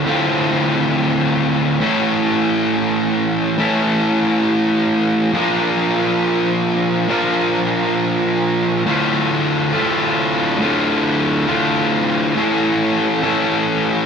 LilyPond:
\new Staff \with { instrumentName = "Distorted electric guitar" } { \time 3/4 \key bes \lydian \tempo 4 = 102 <d, a, d a c' f'>2. | <a, e a cis' e' a'>2. | <a, e a cis' e' a'>2. | <bes, f bes d' f' bes'>2. |
<bes, f bes d' f' bes'>2. | \key d \minor <d, a, d a f'>4. <d, a, d a f'>4. | <d, a, d a f'>4. <d, a, d a f'>4. | <a, e a cis' e' a'>4. <a, e a cis' e' a'>4. | }